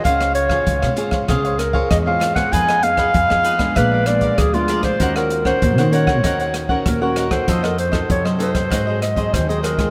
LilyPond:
<<
  \new Staff \with { instrumentName = "Cavaquinho" } { \time 4/4 \key ees \dorian \tempo 4 = 97 <f' c'' des'' f''>16 <c'' des'' f''>16 r16 <c'' des'' f''>8 <c'' des'' f''>16 <f' c'' des'' f''>16 <c'' des'' f''>16 <f' c'' des'' f''>16 <c'' des'' f''>16 r16 <c'' des'' f''>8 <c'' des'' f''>16 <f' c'' des'' f''>16 <c'' des'' f''>16 | <f' aes' ces'' ees''>16 <aes' ces'' ees''>16 r16 <aes' ces'' ees''>8 <aes' ces'' ees''>16 <f' aes' ces'' ees''>16 <aes' ces'' ees''>16 <aes' bes' d'' f''>16 <bes' d'' f''>16 r16 <bes' d'' f''>8 <bes' d'' f''>16 <aes' bes' d'' f''>16 <bes' d'' f''>16 | <ees' bes' des'' ges''>16 <bes' des'' ges''>16 r16 <bes' des'' ges''>8 <bes' des'' ges''>16 <ees' bes' des'' ges''>16 <bes' des'' ges''>16 <ees' bes' des'' ges''>16 <bes' des'' ges''>16 r16 <bes' des'' ges''>8 <bes' des'' ges''>16 <ees' bes' des'' ges''>16 <bes' des'' ges''>16 | <f' a' c'' ees''>16 <a' c'' ees''>16 r16 <a' c'' ees''>8 <a' c'' ees''>16 <f' a' c'' ees''>16 <a' c'' ees''>16 <ges' aes' c'' ees''>16 <aes' c'' ees''>16 r16 <aes' c'' ees''>8 <aes' c'' ees''>16 <ges' aes' c'' ees''>16 <aes' c'' ees''>16 | }
  \new Staff \with { instrumentName = "Clarinet" } { \time 4/4 \key ees \dorian f''8 des''4 r8 aes'8 bes'8 ees''16 f''8 ges''16 | aes''8 f''4. ces''8 d''8 aes'16 f'8 c''16~ | c''16 bes'8 c''8. des''4 r8 bes'16 ges'8 c''16~ | c''16 bes'16 c''8 des''8 c''4 ees''8 c''16 aes'16 bes'8 | }
  \new Staff \with { instrumentName = "Nylon-string guitar" } { \time 4/4 \key ees \dorian << { <c' f' aes'>8. <f' aes'>8. <c' f' aes'>8 <c' f' aes'>8 r16 <c' f' aes'>8 <c' f' aes'>8 <ces' ees' aes'>16~ | <ces' ees' aes'>8 <ces' ees' aes'>8 r16 <ces' ees' aes'>8 <aes ces' d'>8. <aes ces' d'>8 r16 <aes ces' d'>8. | <des' ges' bes'>8. <des' ges' bes'>8. <des' ges' bes'>8 <des' ges' bes'>8. <des' ges' bes'>8 <des' ges' bes'>8 <c' ees' a'>16~ | <c' ees' a'>8. <c' ees' a'>8. <c' ees' a'>16 r16 <ges c' ees'>8. <ges c' ees'>8 <ges c' ees'>8 <aes c' f'>16 | } \\ { des4 aes,4 des4 aes,4 | f4 f4 bes,4 f4 | ees4 bes,4 ees4 bes,4 | f4 c4 aes,4 ees4 | } >> }
  \new Staff \with { instrumentName = "Upright bass" } { \clef bass \time 4/4 \key ees \dorian des,4 des,16 des8. des,4 e,4 | f,4 f,16 f,8. bes,,4 d,4 | ees,4 ees,16 ees8. ees,4 ees,4 | f,4 f,16 ges,8. aes,4 ees,4 | }
  \new DrumStaff \with { instrumentName = "Drums" } \drummode { \time 4/4 <hh bd>16 <hh ss>16 hh16 <bd ss>16 <hh bd>16 <hh ss>16 hh16 <bd ss>16 <hh bd ss>16 hh16 <hh ss>16 bd16 <hh bd ss>8 <hh ss>16 <hh bd ss>16 | <hh bd>16 <hh ss>16 hh16 <hh bd ss>16 <hh bd>16 ss16 hh16 <hh bd ss>16 <hh bd ss>8 <hh ss>16 <hh bd>16 <hh bd ss>16 hh16 <hh ss>16 <hh bd ss>16 | <hh bd>16 <hh ss>16 hh16 <bd ss>16 <hh bd>16 <hh ss>16 hh16 <bd ss>16 <hh bd ss>16 hh16 <hh ss>16 bd16 <hh bd ss>8 <hh ss>16 <hh bd ss>16 | <hh bd>16 <hh ss>16 hh16 <hh bd ss>16 <hh bd>16 ss16 hh16 <hh bd ss>16 <hh bd ss>8 <hh ss>16 <hh bd>16 <hh bd ss>16 hh16 <hh ss>16 <hh bd ss>16 | }
>>